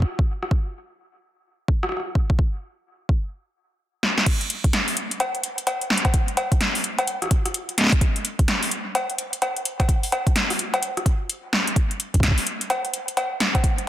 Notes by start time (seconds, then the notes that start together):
0.02 kick
0.19 kick
0.43 cross-stick
0.51 kick
1.68 kick
1.83 cross-stick
1.89 cross-stick
1.92 cross-stick
1.97 cross-stick
2.00 cross-stick
2.15 kick
2.30 kick
2.39 kick
3.09 kick
4.03 snare
4.18 snare
4.26 kick, closed hi-hat, crash
4.41 closed hi-hat
4.50 closed hi-hat
4.64 kick, closed hi-hat
4.73 snare, closed hi-hat
4.88 open hi-hat
4.97 closed hi-hat
5.11 closed hi-hat
5.20 closed hi-hat, cowbell
5.35 closed hi-hat
5.44 closed hi-hat
5.58 closed hi-hat
5.67 closed hi-hat, cowbell
5.81 closed hi-hat
5.90 snare
5.98 closed hi-hat
6.05 kick, closed hi-hat, cowbell
6.14 kick, closed hi-hat
6.28 closed hi-hat
6.37 closed hi-hat, cowbell
6.52 kick, closed hi-hat
6.61 snare, closed hi-hat
6.75 open hi-hat
6.84 closed hi-hat
6.99 closed hi-hat, cowbell
7.07 closed hi-hat
7.22 cross-stick, closed hi-hat
7.24 cross-stick
7.26 cross-stick
7.27 cross-stick
7.29 kick, cross-stick, closed hi-hat
7.46 cross-stick, closed hi-hat
7.54 closed hi-hat
7.69 closed hi-hat
7.78 snare, closed hi-hat
7.81 snare
7.84 snare
7.87 snare
7.89 kick, snare, closed hi-hat
8.01 kick, closed hi-hat
8.16 closed hi-hat
8.25 closed hi-hat
8.39 kick, closed hi-hat
8.48 snare, closed hi-hat
8.63 open hi-hat
8.71 closed hi-hat
8.95 closed hi-hat, cowbell
9.10 closed hi-hat
9.18 closed hi-hat
9.33 closed hi-hat
9.42 closed hi-hat, cowbell
9.56 closed hi-hat
9.65 closed hi-hat
9.80 kick, closed hi-hat, cowbell
9.89 kick, closed hi-hat
10.03 open hi-hat
10.12 closed hi-hat, cowbell
10.27 kick, closed hi-hat
10.36 snare, closed hi-hat
10.50 cross-stick, open hi-hat
10.59 closed hi-hat
10.74 closed hi-hat, cowbell
10.83 closed hi-hat
10.97 cross-stick, closed hi-hat
11.06 kick, closed hi-hat
11.30 closed hi-hat
11.53 snare
11.67 closed hi-hat
11.76 kick, closed hi-hat
11.91 closed hi-hat
12.00 closed hi-hat
12.14 kick, closed hi-hat
12.20 kick
12.23 kick, snare, closed hi-hat
12.28 kick
12.31 kick
12.38 open hi-hat
12.47 closed hi-hat
12.61 closed hi-hat
12.70 closed hi-hat, cowbell
12.85 closed hi-hat
12.94 closed hi-hat
13.08 closed hi-hat
13.17 closed hi-hat, cowbell
13.40 snare, closed hi-hat
13.55 kick, closed hi-hat, cowbell
13.64 kick, closed hi-hat
13.78 closed hi-hat